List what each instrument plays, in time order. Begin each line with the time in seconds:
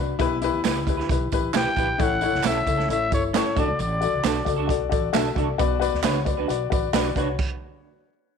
Already playing: upright bass C2, upright piano D4 F#4 B4
0.19 upright bass B1, upright piano B2 E4 G4 B4, kick, closed hi-hat, tambourine
0.41 upright piano E4 G4 B4, closed hi-hat, tambourine
0.53 upright bass D2
0.64 upright bass C#2, clean electric guitar E4 G4 B4, upright piano E4 G4 B4, snare, clap, closed hi-hat, tambourine
0.87 upright bass D2, upright piano E4 G4 B4, kick, closed hi-hat, tambourine
0.97 clean electric guitar E4 G4 B4, snare
1.09 upright bass B1, upright piano E4 G4 B4, kick, closed hi-hat, tambourine
1.32 upright bass A1, upright piano E4 G4 B4, kick, closed hi-hat, tambourine
1.53 upright bass B1, upright piano E4 G4 B4, clean electric guitar E4 G4 B4, trumpet G5, snare, clap, closed hi-hat, tambourine
1.76 upright bass A#1, clean electric guitar E4 G4 B4, upright piano E4 G4 B4, kick, closed hi-hat, tambourine
1.98 upright bass A1, upright piano A2 E4 A4 C#5, kick, closed hi-hat, tambourine
2.03 trumpet F#5
2.21 upright piano E4 A4 C#5, closed hi-hat, tambourine
2.33 upright bass C#2, snare
2.43 upright bass B1, clean electric guitar C#4 E4 A4, upright piano E4 A4 C#5, trumpet E5, snare, clap, closed hi-hat, tambourine
2.66 upright bass C#2, upright piano E4 A4 C#5, kick, closed hi-hat, tambourine
2.77 clean electric guitar C#4 E4 A4, snare
2.89 upright bass A1, upright piano E4 A4 C#5, trumpet E5, closed hi-hat, tambourine
3.11 upright bass G1, upright piano E4 A4 C#5, trumpet C#5, kick, closed hi-hat, tambourine
3.33 clean electric guitar C#4 E4 A4, upright piano E4 A4 C#5, trumpet C#5, snare, clap, closed hi-hat, tambourine
3.55 upright bass A1, upright piano A2 F#4 A4 D5, clean electric guitar D4 F#4 A4, trumpet D5, kick, closed hi-hat, tambourine
3.68 upright bass C#2
3.79 upright bass A1, trumpet D5, closed hi-hat, tambourine
4.01 upright piano F#4 A4 D5, closed hi-hat, tambourine
4.13 upright bass C#2
4.23 upright bass B1, clean electric guitar D4 F#4 A4, upright piano F#4 A4 D5, snare, clap, closed hi-hat, tambourine
4.45 upright bass C#2, upright piano F#4 A4 D5, kick, closed hi-hat, tambourine
4.56 clean electric guitar D4 F#4 A4
4.67 upright bass B1, upright piano F#4 A4 D5, kick, closed hi-hat
4.89 upright bass A1, upright piano F#4 A4 D5, kick, closed hi-hat, tambourine
5.13 upright bass B1, clean electric guitar D4 F#4 A4, upright piano F#4 A4 E5, snare, clap, closed hi-hat, tambourine
5.35 upright bass C2, clean electric guitar D4 F#4 A4, upright piano F#4 A4 D5, kick, closed hi-hat
5.58 upright bass B1, upright piano B2 F#4 B4 D5, kick, closed hi-hat, tambourine
5.80 upright piano F#4 B4 D5, closed hi-hat, tambourine
5.93 upright bass D2, snare
6.03 upright bass C#2, clean electric guitar D4 F#4 B4, upright piano F#4 B4 C#5, snare, clap, closed hi-hat, tambourine
6.25 upright bass D2, upright piano F#4 B4 D5, kick, closed hi-hat, tambourine
6.37 clean electric guitar D4 F#4 B4
6.48 upright bass B1, upright piano F#4 B4 D5, closed hi-hat, tambourine
6.70 upright bass A1, upright piano F#4 B4 D5, kick, closed hi-hat, tambourine
6.93 upright bass B1, clean electric guitar D4 F#4 B4, upright piano F#4 B4 D5, snare, clap, closed hi-hat, tambourine
7.16 upright bass C2, clean electric guitar D4 F#4 B4, upright piano F#4 B4 C#5, kick, closed hi-hat
7.39 kick, crash